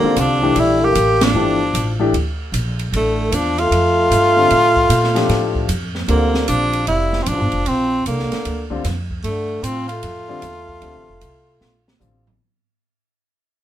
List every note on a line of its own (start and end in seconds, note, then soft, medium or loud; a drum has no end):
0.00 0.20 D3 medium
0.00 0.37 D3 medium
0.00 0.37 G3 medium
0.00 0.21 A#3 medium
0.00 0.38 C4 medium
0.00 muted upright bass stroke soft
0.04 0.38 F4 medium
0.16 0.55 C2 medium
0.16 0.59 F3 medium
0.16 0.61 D4 medium
0.16 hi-hat pedal medium
0.16 ride medium
0.42 0.93 E3 medium
0.42 0.93 A3 medium
0.42 0.93 D4 medium
0.42 0.93 G4 medium
0.56 0.94 A#1 medium
0.56 0.85 G3 medium
0.56 0.86 E4 medium
0.56 ride medium
0.83 1.25 A#3 medium
0.83 1.25 G4 medium
0.95 1.34 A1 medium
0.95 hi-hat pedal medium
0.95 ride medium
1.21 2.01 F3 medium
1.21 2.01 D4 medium
1.21 snare medium
1.21 ride medium
1.35 1.73 G1 medium
1.35 1.58 E3 medium
1.35 1.58 A3 medium
1.35 1.58 D4 medium
1.35 1.59 G4 medium
1.74 2.12 A1 medium
1.74 hi-hat pedal medium
1.74 ride medium
1.99 2.12 E3 medium
1.99 2.12 A3 medium
1.99 2.12 D4 medium
1.99 2.13 G4 medium
2.13 2.52 D2 medium
2.13 ride medium
2.52 2.91 A#1 medium
2.52 hi-hat pedal soft
2.52 ride medium
2.79 ride soft
2.92 3.31 A1 medium
2.92 3.34 D3 medium
2.92 3.36 A3 medium
2.92 ride medium
3.32 3.70 E2 medium
3.32 3.62 F3 medium
3.32 3.60 D4 medium
3.32 hi-hat pedal medium
3.32 ride medium
3.58 5.70 A3 medium
3.58 5.69 F4 loud
3.58 ride soft
3.71 4.10 F2 medium
3.71 ride medium
4.10 4.49 G2 medium
4.10 hi-hat pedal medium
4.10 ride medium
4.36 4.49 D3 medium
4.36 4.49 G3 medium
4.36 4.49 C4 medium
4.36 4.50 F4 medium
4.50 4.89 A2 medium
4.50 ride medium
4.76 kick soft
4.89 5.28 A#2 medium
4.89 hi-hat pedal medium
4.89 ride medium
5.04 snare soft
5.14 5.66 F3 medium
5.14 5.66 A3 medium
5.14 5.66 D4 medium
5.14 5.66 G4 medium
5.14 snare soft
5.14 ride soft
5.29 5.68 A2 medium
5.29 snare soft
5.29 ride medium
5.55 kick medium
5.68 6.07 F2 medium
5.68 hi-hat pedal medium
5.68 ride medium
5.95 snare soft
6.08 6.47 D2 medium
6.08 7.18 D3 medium
6.08 6.46 D3 medium
6.08 7.18 G3 medium
6.08 6.45 A#3 medium
6.08 7.19 C4 medium
6.08 7.19 F4 medium
6.08 ride medium
6.34 snare soft
6.48 6.86 A#1 medium
6.48 6.85 F3 medium
6.48 6.85 D4 medium
6.48 hi-hat pedal medium
6.48 ride medium
6.73 ride soft
6.87 7.26 F1 medium
6.87 7.25 G3 medium
6.87 7.24 E4 medium
6.87 ride medium
7.13 snare soft
7.22 7.30 E3 medium
7.22 7.29 C4 medium
7.22 hi-hat pedal soft
7.22 ride medium
7.27 7.40 A1 medium
7.27 7.67 F3 medium
7.27 7.69 D4 medium
7.40 7.52 G1 soft
7.52 7.65 F1 medium
7.52 ride soft
7.66 8.04 A#1 medium
7.66 8.06 F3 medium
7.66 8.06 C4 medium
7.66 ride medium
8.06 8.30 C2 medium
8.06 8.67 D3 medium
8.06 8.67 A#3 medium
8.06 hi-hat pedal medium
8.06 ride medium
8.19 snare soft
8.32 muted upright bass stroke soft
8.32 snare soft
8.32 ride soft
8.45 8.83 D2 medium
8.45 ride medium
8.70 8.83 D3 medium
8.70 8.83 G3 medium
8.70 8.83 C4 medium
8.70 8.84 F4 medium
8.70 kick soft
8.84 9.23 F2 medium
8.84 snare soft
8.84 hi-hat pedal medium
8.84 ride medium
9.10 kick soft
9.24 9.62 G2 medium
9.24 9.67 D3 medium
9.24 9.64 A3 medium
9.24 ride medium
9.63 10.01 A2 medium
9.63 9.90 F3 medium
9.63 9.88 C4 medium
9.63 hi-hat pedal medium
9.63 ride medium
9.88 11.97 A3 medium
9.88 11.96 F4 medium
9.88 ride soft
10.03 10.41 F2 medium
10.03 ride medium
10.28 10.41 D3 medium
10.28 10.41 G3 medium
10.28 10.41 C4 medium
10.28 10.42 F4 medium
10.42 10.80 E2 medium
10.42 hi-hat pedal soft
10.42 ride medium
10.68 kick soft
10.81 10.95 D2 medium
10.81 11.05 D3 medium
10.81 11.05 G3 medium
10.81 11.05 C4 medium
10.81 11.05 F4 medium
10.81 ride soft
10.95 11.07 A1 medium
11.08 11.20 F1 medium
11.21 11.60 C2 medium
11.21 hi-hat pedal medium
11.21 ride medium
11.61 11.99 A#1 medium
11.61 snare soft
11.88 snare medium
11.99 12.39 A1 medium
11.99 12.23 D3 medium
11.99 12.23 G3 medium
11.99 12.23 C4 medium
11.99 12.23 F4 medium
11.99 floor tom medium
11.99 hi-hat pedal medium
12.27 floor tom medium